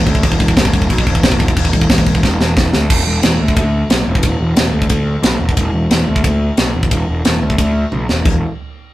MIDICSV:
0, 0, Header, 1, 3, 480
1, 0, Start_track
1, 0, Tempo, 334448
1, 336, Time_signature, 4, 2, 24, 8
1, 12825, End_track
2, 0, Start_track
2, 0, Title_t, "Picked electric bass"
2, 0, Program_c, 0, 34
2, 95, Note_on_c, 0, 38, 99
2, 293, Note_off_c, 0, 38, 0
2, 337, Note_on_c, 0, 28, 98
2, 533, Note_off_c, 0, 28, 0
2, 576, Note_on_c, 0, 28, 89
2, 772, Note_off_c, 0, 28, 0
2, 816, Note_on_c, 0, 28, 98
2, 1012, Note_off_c, 0, 28, 0
2, 1060, Note_on_c, 0, 28, 88
2, 1254, Note_off_c, 0, 28, 0
2, 1295, Note_on_c, 0, 35, 100
2, 1490, Note_off_c, 0, 35, 0
2, 1532, Note_on_c, 0, 28, 83
2, 1728, Note_off_c, 0, 28, 0
2, 1767, Note_on_c, 0, 28, 93
2, 2162, Note_off_c, 0, 28, 0
2, 2241, Note_on_c, 0, 28, 93
2, 2441, Note_off_c, 0, 28, 0
2, 2487, Note_on_c, 0, 28, 89
2, 2684, Note_off_c, 0, 28, 0
2, 2725, Note_on_c, 0, 28, 92
2, 2923, Note_off_c, 0, 28, 0
2, 2963, Note_on_c, 0, 28, 85
2, 3161, Note_off_c, 0, 28, 0
2, 3203, Note_on_c, 0, 28, 94
2, 3401, Note_off_c, 0, 28, 0
2, 3451, Note_on_c, 0, 28, 78
2, 3645, Note_off_c, 0, 28, 0
2, 3683, Note_on_c, 0, 28, 86
2, 3880, Note_off_c, 0, 28, 0
2, 3921, Note_on_c, 0, 38, 85
2, 4119, Note_off_c, 0, 38, 0
2, 4160, Note_on_c, 0, 28, 89
2, 4339, Note_off_c, 0, 28, 0
2, 4405, Note_on_c, 0, 28, 85
2, 4582, Note_off_c, 0, 28, 0
2, 4644, Note_on_c, 0, 28, 90
2, 4822, Note_off_c, 0, 28, 0
2, 4899, Note_on_c, 0, 38, 84
2, 5071, Note_off_c, 0, 38, 0
2, 5116, Note_on_c, 0, 38, 100
2, 5475, Note_off_c, 0, 38, 0
2, 5591, Note_on_c, 0, 35, 84
2, 5773, Note_off_c, 0, 35, 0
2, 5851, Note_on_c, 0, 28, 87
2, 6026, Note_off_c, 0, 28, 0
2, 6075, Note_on_c, 0, 28, 84
2, 6256, Note_off_c, 0, 28, 0
2, 6322, Note_on_c, 0, 28, 83
2, 6500, Note_off_c, 0, 28, 0
2, 6545, Note_on_c, 0, 28, 87
2, 6729, Note_off_c, 0, 28, 0
2, 6785, Note_on_c, 0, 38, 87
2, 6969, Note_off_c, 0, 38, 0
2, 7031, Note_on_c, 0, 38, 93
2, 7392, Note_off_c, 0, 38, 0
2, 7500, Note_on_c, 0, 35, 88
2, 7686, Note_off_c, 0, 35, 0
2, 7743, Note_on_c, 0, 28, 84
2, 7928, Note_off_c, 0, 28, 0
2, 7994, Note_on_c, 0, 28, 94
2, 8175, Note_off_c, 0, 28, 0
2, 8225, Note_on_c, 0, 28, 81
2, 8410, Note_off_c, 0, 28, 0
2, 8479, Note_on_c, 0, 28, 88
2, 8659, Note_off_c, 0, 28, 0
2, 8721, Note_on_c, 0, 38, 78
2, 8900, Note_off_c, 0, 38, 0
2, 8956, Note_on_c, 0, 38, 90
2, 9316, Note_off_c, 0, 38, 0
2, 9443, Note_on_c, 0, 35, 86
2, 9622, Note_off_c, 0, 35, 0
2, 9678, Note_on_c, 0, 28, 88
2, 9859, Note_off_c, 0, 28, 0
2, 9920, Note_on_c, 0, 28, 86
2, 10101, Note_off_c, 0, 28, 0
2, 10172, Note_on_c, 0, 28, 80
2, 10349, Note_off_c, 0, 28, 0
2, 10413, Note_on_c, 0, 28, 80
2, 10589, Note_off_c, 0, 28, 0
2, 10651, Note_on_c, 0, 38, 79
2, 10828, Note_off_c, 0, 38, 0
2, 10883, Note_on_c, 0, 38, 87
2, 11243, Note_off_c, 0, 38, 0
2, 11379, Note_on_c, 0, 35, 78
2, 11554, Note_off_c, 0, 35, 0
2, 11614, Note_on_c, 0, 28, 84
2, 11791, Note_off_c, 0, 28, 0
2, 11841, Note_on_c, 0, 28, 82
2, 12069, Note_off_c, 0, 28, 0
2, 12825, End_track
3, 0, Start_track
3, 0, Title_t, "Drums"
3, 95, Note_on_c, 9, 36, 74
3, 95, Note_on_c, 9, 49, 54
3, 214, Note_off_c, 9, 36, 0
3, 214, Note_on_c, 9, 36, 84
3, 238, Note_off_c, 9, 49, 0
3, 335, Note_off_c, 9, 36, 0
3, 335, Note_on_c, 9, 36, 96
3, 335, Note_on_c, 9, 49, 81
3, 455, Note_off_c, 9, 36, 0
3, 455, Note_on_c, 9, 36, 83
3, 478, Note_off_c, 9, 49, 0
3, 575, Note_off_c, 9, 36, 0
3, 575, Note_on_c, 9, 36, 81
3, 575, Note_on_c, 9, 49, 52
3, 694, Note_off_c, 9, 36, 0
3, 694, Note_on_c, 9, 36, 84
3, 718, Note_off_c, 9, 49, 0
3, 814, Note_on_c, 9, 49, 73
3, 815, Note_off_c, 9, 36, 0
3, 815, Note_on_c, 9, 36, 86
3, 822, Note_on_c, 9, 38, 107
3, 935, Note_off_c, 9, 36, 0
3, 935, Note_on_c, 9, 36, 77
3, 957, Note_off_c, 9, 49, 0
3, 966, Note_off_c, 9, 38, 0
3, 1055, Note_off_c, 9, 36, 0
3, 1055, Note_on_c, 9, 36, 82
3, 1056, Note_on_c, 9, 49, 56
3, 1173, Note_off_c, 9, 36, 0
3, 1173, Note_on_c, 9, 36, 81
3, 1200, Note_off_c, 9, 49, 0
3, 1293, Note_off_c, 9, 36, 0
3, 1293, Note_on_c, 9, 36, 82
3, 1295, Note_on_c, 9, 49, 77
3, 1412, Note_off_c, 9, 36, 0
3, 1412, Note_on_c, 9, 36, 89
3, 1438, Note_off_c, 9, 49, 0
3, 1533, Note_off_c, 9, 36, 0
3, 1533, Note_on_c, 9, 36, 83
3, 1535, Note_on_c, 9, 49, 62
3, 1651, Note_off_c, 9, 36, 0
3, 1651, Note_on_c, 9, 36, 81
3, 1679, Note_off_c, 9, 49, 0
3, 1769, Note_on_c, 9, 49, 72
3, 1772, Note_off_c, 9, 36, 0
3, 1772, Note_on_c, 9, 36, 86
3, 1778, Note_on_c, 9, 38, 109
3, 1890, Note_off_c, 9, 36, 0
3, 1890, Note_on_c, 9, 36, 78
3, 1913, Note_off_c, 9, 49, 0
3, 1922, Note_off_c, 9, 38, 0
3, 2009, Note_off_c, 9, 36, 0
3, 2009, Note_on_c, 9, 36, 78
3, 2011, Note_on_c, 9, 49, 51
3, 2129, Note_off_c, 9, 36, 0
3, 2129, Note_on_c, 9, 36, 92
3, 2154, Note_off_c, 9, 49, 0
3, 2249, Note_off_c, 9, 36, 0
3, 2249, Note_on_c, 9, 36, 90
3, 2252, Note_on_c, 9, 49, 83
3, 2368, Note_off_c, 9, 36, 0
3, 2368, Note_on_c, 9, 36, 75
3, 2395, Note_off_c, 9, 49, 0
3, 2484, Note_on_c, 9, 49, 59
3, 2487, Note_off_c, 9, 36, 0
3, 2487, Note_on_c, 9, 36, 78
3, 2605, Note_off_c, 9, 36, 0
3, 2605, Note_on_c, 9, 36, 81
3, 2627, Note_off_c, 9, 49, 0
3, 2718, Note_on_c, 9, 49, 78
3, 2724, Note_off_c, 9, 36, 0
3, 2724, Note_on_c, 9, 36, 88
3, 2726, Note_on_c, 9, 38, 106
3, 2843, Note_off_c, 9, 36, 0
3, 2843, Note_on_c, 9, 36, 84
3, 2861, Note_off_c, 9, 49, 0
3, 2870, Note_off_c, 9, 38, 0
3, 2959, Note_on_c, 9, 49, 61
3, 2964, Note_off_c, 9, 36, 0
3, 2964, Note_on_c, 9, 36, 80
3, 3084, Note_off_c, 9, 36, 0
3, 3084, Note_on_c, 9, 36, 76
3, 3103, Note_off_c, 9, 49, 0
3, 3205, Note_off_c, 9, 36, 0
3, 3205, Note_on_c, 9, 36, 86
3, 3215, Note_on_c, 9, 38, 62
3, 3348, Note_off_c, 9, 36, 0
3, 3359, Note_off_c, 9, 38, 0
3, 3453, Note_on_c, 9, 38, 71
3, 3597, Note_off_c, 9, 38, 0
3, 3684, Note_on_c, 9, 36, 86
3, 3694, Note_on_c, 9, 38, 94
3, 3828, Note_off_c, 9, 36, 0
3, 3838, Note_off_c, 9, 38, 0
3, 3926, Note_on_c, 9, 38, 76
3, 4069, Note_off_c, 9, 38, 0
3, 4163, Note_on_c, 9, 57, 118
3, 4164, Note_on_c, 9, 36, 111
3, 4306, Note_off_c, 9, 57, 0
3, 4307, Note_off_c, 9, 36, 0
3, 4635, Note_on_c, 9, 53, 65
3, 4644, Note_on_c, 9, 38, 105
3, 4779, Note_off_c, 9, 53, 0
3, 4787, Note_off_c, 9, 38, 0
3, 5000, Note_on_c, 9, 36, 79
3, 5116, Note_on_c, 9, 53, 66
3, 5120, Note_off_c, 9, 36, 0
3, 5120, Note_on_c, 9, 36, 95
3, 5259, Note_off_c, 9, 53, 0
3, 5263, Note_off_c, 9, 36, 0
3, 5599, Note_on_c, 9, 53, 63
3, 5607, Note_on_c, 9, 38, 110
3, 5742, Note_off_c, 9, 53, 0
3, 5751, Note_off_c, 9, 38, 0
3, 5959, Note_on_c, 9, 36, 95
3, 6068, Note_on_c, 9, 53, 75
3, 6077, Note_off_c, 9, 36, 0
3, 6077, Note_on_c, 9, 36, 100
3, 6211, Note_off_c, 9, 53, 0
3, 6220, Note_off_c, 9, 36, 0
3, 6552, Note_on_c, 9, 53, 73
3, 6561, Note_on_c, 9, 38, 109
3, 6696, Note_off_c, 9, 53, 0
3, 6704, Note_off_c, 9, 38, 0
3, 6915, Note_on_c, 9, 36, 81
3, 7026, Note_on_c, 9, 53, 69
3, 7034, Note_off_c, 9, 36, 0
3, 7034, Note_on_c, 9, 36, 90
3, 7169, Note_off_c, 9, 53, 0
3, 7178, Note_off_c, 9, 36, 0
3, 7512, Note_on_c, 9, 53, 66
3, 7521, Note_on_c, 9, 38, 100
3, 7656, Note_off_c, 9, 53, 0
3, 7664, Note_off_c, 9, 38, 0
3, 7876, Note_on_c, 9, 36, 83
3, 7993, Note_on_c, 9, 53, 66
3, 7995, Note_off_c, 9, 36, 0
3, 7995, Note_on_c, 9, 36, 88
3, 8136, Note_off_c, 9, 53, 0
3, 8139, Note_off_c, 9, 36, 0
3, 8478, Note_on_c, 9, 53, 62
3, 8487, Note_on_c, 9, 38, 97
3, 8622, Note_off_c, 9, 53, 0
3, 8630, Note_off_c, 9, 38, 0
3, 8839, Note_on_c, 9, 36, 79
3, 8957, Note_off_c, 9, 36, 0
3, 8957, Note_on_c, 9, 36, 86
3, 8959, Note_on_c, 9, 53, 60
3, 9101, Note_off_c, 9, 36, 0
3, 9102, Note_off_c, 9, 53, 0
3, 9435, Note_on_c, 9, 53, 59
3, 9443, Note_on_c, 9, 38, 99
3, 9578, Note_off_c, 9, 53, 0
3, 9587, Note_off_c, 9, 38, 0
3, 9801, Note_on_c, 9, 36, 85
3, 9920, Note_on_c, 9, 53, 67
3, 9922, Note_off_c, 9, 36, 0
3, 9922, Note_on_c, 9, 36, 96
3, 10064, Note_off_c, 9, 53, 0
3, 10065, Note_off_c, 9, 36, 0
3, 10404, Note_on_c, 9, 53, 63
3, 10412, Note_on_c, 9, 38, 106
3, 10547, Note_off_c, 9, 53, 0
3, 10556, Note_off_c, 9, 38, 0
3, 10763, Note_on_c, 9, 36, 72
3, 10884, Note_on_c, 9, 53, 69
3, 10885, Note_off_c, 9, 36, 0
3, 10885, Note_on_c, 9, 36, 84
3, 11028, Note_off_c, 9, 36, 0
3, 11028, Note_off_c, 9, 53, 0
3, 11367, Note_on_c, 9, 48, 55
3, 11511, Note_off_c, 9, 48, 0
3, 11614, Note_on_c, 9, 38, 69
3, 11757, Note_off_c, 9, 38, 0
3, 11846, Note_on_c, 9, 36, 93
3, 11849, Note_on_c, 9, 43, 95
3, 11849, Note_on_c, 9, 49, 81
3, 11990, Note_off_c, 9, 36, 0
3, 11993, Note_off_c, 9, 43, 0
3, 11993, Note_off_c, 9, 49, 0
3, 12825, End_track
0, 0, End_of_file